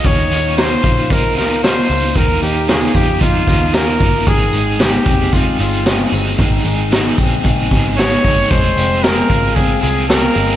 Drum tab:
HH |xxxxxxxo|xxxxxxxo|xxxxxxxo|xxxxxxxo|
SD |--o--oo-|--o--oo-|--o---o-|--o--oo-|
BD |o--oo---|o--ooo-o|o--oo---|o--ooo-o|

HH |xxxxxxxo|
SD |--o---o-|
BD |o--oo---|